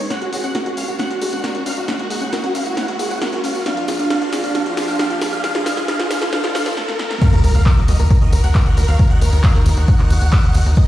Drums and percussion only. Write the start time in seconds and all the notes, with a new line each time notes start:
0.10 snare, closed hi-hat, tambourine
0.22 closed hi-hat
0.33 open hi-hat, tambourine
0.44 closed hi-hat, tambourine
0.55 snare, closed hi-hat, tambourine
0.66 closed hi-hat
0.77 open hi-hat, tambourine
0.88 closed hi-hat, tambourine
0.99 snare, closed hi-hat, tambourine
1.11 closed hi-hat
1.21 open hi-hat, tambourine
1.33 closed hi-hat, tambourine
1.44 snare, closed hi-hat, tambourine
1.55 closed hi-hat
1.66 open hi-hat, tambourine
1.77 closed hi-hat, tambourine
1.88 snare, closed hi-hat, tambourine
1.99 closed hi-hat
2.10 open hi-hat, tambourine
2.22 closed hi-hat, tambourine
2.33 snare, closed hi-hat, tambourine
2.44 closed hi-hat
2.55 open hi-hat, tambourine
2.65 closed hi-hat, tambourine
2.77 snare, closed hi-hat, tambourine
2.88 closed hi-hat
2.99 open hi-hat, tambourine
3.10 closed hi-hat, tambourine
3.22 snare, closed hi-hat, tambourine
3.33 closed hi-hat
3.44 open hi-hat, tambourine
3.55 open hi-hat, tambourine
3.66 snare, closed hi-hat, tambourine
3.77 closed hi-hat
3.88 snare, open hi-hat, tambourine
3.99 closed hi-hat, tambourine
4.10 snare, closed hi-hat, tambourine
4.22 closed hi-hat
4.32 snare, open hi-hat, tambourine
4.44 closed hi-hat, tambourine
4.55 snare, closed hi-hat, tambourine
4.66 closed hi-hat
4.77 snare, open hi-hat, tambourine
4.88 closed hi-hat, tambourine
4.99 snare, closed hi-hat, tambourine
5.11 closed hi-hat
5.21 snare, open hi-hat, tambourine
5.33 closed hi-hat, tambourine
5.44 snare, closed hi-hat, tambourine
5.55 snare, closed hi-hat
5.66 snare, open hi-hat, tambourine
5.77 snare, closed hi-hat, tambourine
5.88 snare, closed hi-hat, tambourine
6.00 snare, closed hi-hat
6.11 snare, open hi-hat, tambourine
6.21 snare, closed hi-hat, tambourine
6.33 snare, closed hi-hat, tambourine
6.44 snare, closed hi-hat
6.55 snare, open hi-hat, tambourine
6.66 snare, closed hi-hat, tambourine
6.77 snare
6.88 snare
6.99 snare
7.10 snare
7.22 kick, closed hi-hat, crash, tambourine
7.33 closed hi-hat
7.44 open hi-hat, tambourine
7.55 closed hi-hat, tambourine
7.66 kick, clap, closed hi-hat, tambourine
7.77 closed hi-hat
7.88 open hi-hat, tambourine
7.99 closed hi-hat, tambourine
8.10 kick, closed hi-hat, tambourine
8.22 closed hi-hat
8.32 open hi-hat, tambourine
8.44 closed hi-hat, tambourine
8.55 kick, clap, closed hi-hat, tambourine
8.66 closed hi-hat
8.77 open hi-hat, tambourine
8.88 closed hi-hat, tambourine
8.99 kick, closed hi-hat, tambourine
9.10 closed hi-hat
9.21 open hi-hat, tambourine
9.33 closed hi-hat, tambourine
9.44 kick, clap, closed hi-hat, tambourine
9.55 closed hi-hat
9.66 open hi-hat, tambourine
9.77 closed hi-hat, tambourine
9.88 kick, closed hi-hat, tambourine
9.99 clap, closed hi-hat
10.10 open hi-hat, tambourine
10.21 closed hi-hat, tambourine
10.33 kick, clap, closed hi-hat, tambourine
10.44 closed hi-hat
10.54 open hi-hat, tambourine
10.66 open hi-hat, tambourine
10.76 kick, closed hi-hat, tambourine